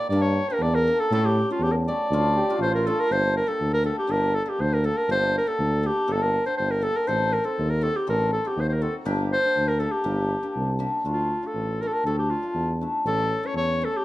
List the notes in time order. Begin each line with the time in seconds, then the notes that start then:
0.10 G2 A#3 D4 G4 D5
0.22 C#5
0.49 A#3 D4 G4 A#4
0.59 E2 D5
0.75 A#4
0.87 A#3 D4 G4
1.00 A4
1.11 A2 A3 C#4 E4 A4
1.25 G4
1.50 A3 C#4 F4 G4
1.59 E2
1.63 G4
1.72 A#4
1.88 A3 C#4 G4 D5
2.11 D2 A3 D4 F4
2.36 G4
2.50 A3 D4 F4
2.59 A1 F4 C5
2.75 A#4
2.87 A3 D4 F4 A4
3.00 A#4
3.10 G1 A#3 D4 G4 C5
3.37 A#4
3.47 A#3 D4 G4 A4
3.61 D2
3.74 A#4
3.84 A#3 D4 G4 A4
3.99 G4
4.07 G1 A#3 D4 G4
4.12 A#4
4.35 A4
4.45 A#3 D4 G4 A4
4.49 G4
4.60 D2 C5
4.74 A#4
4.84 A#3 D4 G4 A4
4.97 A#4
5.08 G1 A#3 D4 G4
5.12 C5
5.38 A#4
5.47 A#3 D4 G4 A4
5.59 D2
5.83 A#3 D4 G4
6.08 G1 A#3 D4 A4
6.12 A4
6.23 A#4
6.45 A#3 D4 G4 C5
6.57 G1 C5
6.71 A#4
6.82 A#3 D4 G4 A4
6.97 A#4
7.07 A1 C4 D#4 A4 C5
7.33 A#4
7.44 C4 D#4 A4 C5
7.59 D#2
7.70 A#4
7.81 C4 D#4 F#4 A4
7.96 G4
8.07 A1 C4 D#4 A4 A#4
8.33 A4
8.45 C4 D#4 F#4 G4
8.56 D#2
8.61 C5
8.69 A#4 C5
8.82 C4 D#4 F#4 A4
9.05 G1 A#3 D4 G4
9.33 C5
9.44 A#3 D4 G4
9.57 D2
9.68 A#4
9.80 A#3 D4 G4 A4
9.92 G4
10.04 G1 A#3 D4 G4
10.43 A#3 D4 G4
10.55 C2
10.79 A#3 D4 G4
11.04 D2 A3 D4 F4
11.12 F4
11.43 A3 D4 F4
11.47 A4
11.54 A1
11.82 A3 D4 G4 A#4
11.88 A4
11.93 A#4
12.04 D2 A3 D4 G4 A4
12.19 G4
12.30 F4
12.43 A3 D4 F4
12.55 E2
12.81 A3 D4 E4
13.04 A1 A3 C#4 E4 A4
13.43 A3 C#4 E4 C#5
13.54 E2 C#5
13.81 A3 C#4 E4 A4
13.97 G4